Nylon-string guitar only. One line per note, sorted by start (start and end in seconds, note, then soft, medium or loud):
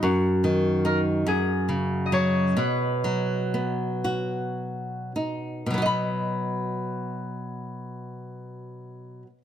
0.03 1.23 F#2 medium
0.44 1.25 D#3 soft
0.85 1.26 D#4 medium
1.27 2.54 F#2 medium
1.69 2.55 C#3 soft
2.12 2.56 F#3 soft
2.57 5.65 B2 medium
3.04 5.11 F#3 soft
3.54 5.72 B3 soft
4.04 5.72 F#4 soft
5.16 5.75 D#4 soft
5.66 9.22 B2 soft
5.71 9.26 F#3 soft
5.71 9.30 B3 soft
5.78 5.85 F#4 soft
5.82 9.38 D#5 soft
5.82 9.41 B5 medium